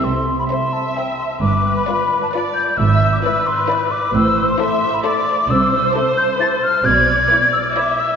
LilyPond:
<<
  \new Staff \with { instrumentName = "Flute" } { \time 3/4 \key c \major \tempo 4 = 132 c'''8. b''16 c'''8 a''8 g''8 c'''8 | d'''8. b''16 b''8. a''16 b''8 g'''8 | e'''8. d'''16 e'''8 c'''8 b''8 d'''8 | e'''8. c'''16 c'''8. b''16 d'''4 |
\key a \minor e'''4. g'''8 a'''8 f'''8 | gis'''4. e'''8 d'''8 e'''8 | }
  \new Staff \with { instrumentName = "Viola section" } { \time 3/4 \key c \major r4 e''2 | b'2 d''4 | e''4 b'2 | c''4 e''4 d''4 |
\key a \minor c''2. | d''2 e''4 | }
  \new Staff \with { instrumentName = "Violin section" } { \time 3/4 \key c \major r4 e''4 e''4 | r4 d''4 d''4 | r4 d''4 d''4 | r4 c''4 c''4 |
\key a \minor r4 c''4 c''4 | r4 d''4 d''4 | }
  \new Staff \with { instrumentName = "Violin section" } { \time 3/4 \key c \major r4 <c' c''>4 <c' c''>4 | r4 <f' b'>4 <f' b'>4 | r4 <e' b'>4 <e' b'>4 | r4 <e' a'>4 <e' a'>4 |
\key a \minor r4 <e' a'>4 <e' a'>4 | r4 <e' b'>4 <e' b'>4 | }
  \new Staff \with { instrumentName = "Cello section" } { \clef bass \time 3/4 \key c \major c4 r2 | g,4 r2 | gis,4 r2 | a,4 r2 |
\key a \minor c4 r2 | b,4 r2 | }
  \new Staff \with { instrumentName = "Double bass section" } { \clef bass \time 3/4 \key c \major c,4 r2 | g,,4 r2 | gis,,4 r2 | a,,4 r2 |
\key a \minor c,4 r2 | b,,4 r2 | }
>>